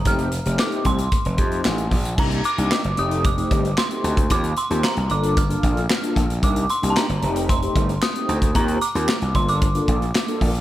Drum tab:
CC |----------------|x---------------|----------------|----------------|
HH |xxxx-xxxxxxx-xox|-xxx-xxxxxxx-xxx|xxxx-xxxxxxx-xxx|xxxx-xxxxxxx-xxx|
CP |----x-------x---|----x-------x---|----x-------x---|----x-------x---|
SD |----o-------o---|----o-------o---|----o-------o---|----o-------o---|
BD |o-----o-o-o---o-|o-------o-o----o|o-------o-o---o-|o-------o-o----o|

CC |----------------|
HH |xxxx-xxxxxxx-xox|
CP |----x-------x---|
SD |----o-------o---|
BD |o-----o-o-o---o-|